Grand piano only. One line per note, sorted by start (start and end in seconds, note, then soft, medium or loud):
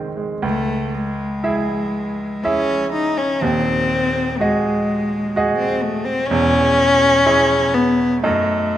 0.00 0.39 G#1 medium
0.00 0.40 G#2 medium
0.00 0.46 D#3 soft
0.00 0.17 G#3 soft
0.00 0.46 C4 soft
0.17 0.43 G#3 soft
0.42 1.40 C#2 medium
1.44 2.40 E4 medium
1.44 2.40 G#4 soft
1.44 2.40 E5 medium
2.44 3.38 E4 medium
2.44 3.39 G#4 medium
2.44 3.39 E5 medium
3.41 4.36 D#1 medium
3.41 4.37 D#2 medium
4.40 5.32 F#4 medium
4.40 5.32 G#4 medium
4.40 5.32 D#5 medium
5.36 6.26 F#4 medium
5.36 6.27 G#4 medium
5.36 6.27 D#5 medium
6.30 7.23 E1 medium
6.30 7.23 E2 medium
7.26 8.20 E4 medium
7.26 8.20 G#4 medium
7.26 8.20 C#5 medium
8.23 8.78 F#2 medium
8.23 8.78 D#4 medium
8.23 8.78 A4 soft
8.23 8.78 D#5 soft